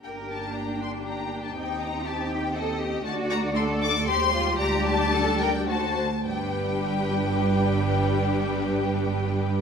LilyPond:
<<
  \new Staff \with { instrumentName = "Violin section" } { \time 3/4 \key c \dorian \tempo 4 = 114 g''8 a''8 bes''8 c'''8 bes''8. a''16 | g''8 bes''8 a''8 g''8 ees''4 | a''8 bes''8 c'''8 d'''8 c'''4 | bes''8 a''4 g''8 a''4 |
g''2.~ | g''2. | }
  \new Staff \with { instrumentName = "Violin section" } { \time 3/4 \key c \dorian << { g''2.~ | g''2. | d''2 c''4 | d''2 c''8 r8 |
b'2.~ | b'2. | } \\ { g'2.~ | g'2. | fis'2 g'4~ | g'2 fis'8 r8 |
g'2.~ | g'2. | } >> }
  \new Staff \with { instrumentName = "Cello section" } { \time 3/4 \key c \dorian bes'4 d'2 | ees'4 g'4 a'8 g'8 | fis'4 a'4 g'8 f'8 | g'4 a'8 bes'8 fis'8 r8 |
g,2.~ | g,2. | }
  \new Staff \with { instrumentName = "Viola section" } { \time 3/4 \key c \dorian << { d'2. | ees'2. | d'2 g'4 | d'2~ d'8 r8 |
d'2.~ | d'2. | } \\ { bes2. | c'2. | a2 g4~ | g2 a8 r8 |
g2.~ | g2. | } >> }
  \new Staff \with { instrumentName = "Double bass section" } { \clef bass \time 3/4 \key c \dorian g,,2. | ees,2. | d,2 ees,4 | d,2~ d,8 r8 |
g,,2.~ | g,,2. | }
>>